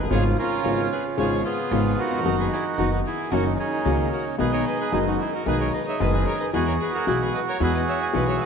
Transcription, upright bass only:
0.04 G1
0.11 G#1
0.65 G#1
1.18 G#1
1.71 G#1
2.25 F#1
2.78 F#1
3.32 F#1
3.85 C#2
4.39 B1
4.93 F#1
5.46 B1
6.00 F#1
6.54 E2
7.07 B1
7.60 E2
8.14 B1

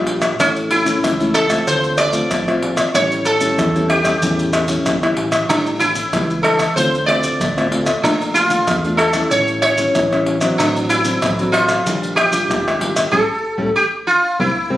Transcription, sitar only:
0.40 C#4
0.71 E4
1.34 A4
1.67 C5
1.98 D5
2.95 C#5
3.26 A4
3.90 G4
5.49 D4
5.79 E4
6.43 A4
6.76 C5
7.06 D5
8.03 D4
8.34 F4
8.97 A4
9.31 C#5
9.62 C#5
10.58 D4
10.89 E4
11.52 F4
12.16 G4
13.11 A4
13.76 G4
14.07 F4
14.40 E4

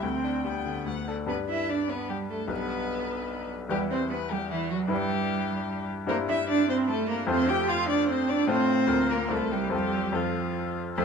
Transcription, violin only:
0.03 G5
0.45 G5
0.88 F#5
1.29 B4
1.49 E5
1.69 D5
1.90 B4
2.10 G4
2.30 A4
2.51 B4
3.71 G4
3.91 C5
4.11 B4
4.32 G4
4.51 E4
4.70 F#4
4.90 G4
6.09 A#4
6.29 E5
6.49 D5
6.69 C5
6.89 A4
7.09 A#4
7.29 C5
7.49 G5
7.69 F5
7.89 D5
8.09 C5
8.29 D5
8.50 C5
9.11 A#4
9.31 A4
9.52 G4
9.73 G4
10.15 F4
10.98 C5

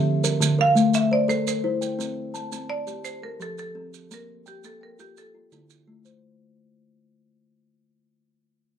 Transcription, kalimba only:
Already playing: D3
0.24 A#4
0.40 D3
0.59 A#4
0.75 A3
1.11 C5
1.28 A4 A#4
1.64 E4 C5
1.81 G5
1.99 C4
2.34 A5
2.52 C4
2.69 A5
2.87 G4
3.22 A4
3.40 F3 G4
3.75 C4 A4
4.11 A#3
4.46 G5
4.64 A#3
4.81 G5
4.99 F4
5.34 F4
5.52 D3 E4
5.88 A3 F4
6.05 C5

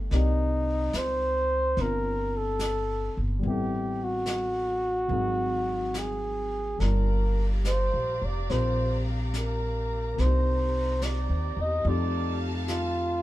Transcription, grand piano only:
Already playing: A3 B3 D4 F4 G4
0.12 A#3 C4 D#4 G4 D5
1.77 C4 D4 F4
3.39 G3 B3
3.44 C4 E4
3.50 A4
5.08 F#3 A#3 C4 D#4
5.12 G#4
6.78 G3 A#3 D4 F4
8.49 C4 F4 G4 A#4
10.14 A#3 C4
10.23 D#4 G4
11.86 A3 C4 D#4 F4 G4

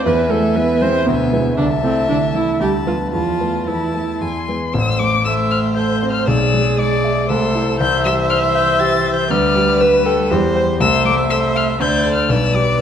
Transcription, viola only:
0.06 B4
0.31 A4
0.56 B4
0.81 C5
1.06 B3
1.57 D4
1.83 C4
2.09 D4
2.34 E4
2.61 G4
2.87 F4
3.13 F4
3.67 E4
5.25 E5
5.76 C5
6.27 G#4
7.30 A4
7.81 E5
9.31 D5
9.81 B4
10.06 A4
10.31 G4
10.56 C5
10.81 E5
11.81 C5
12.30 B4

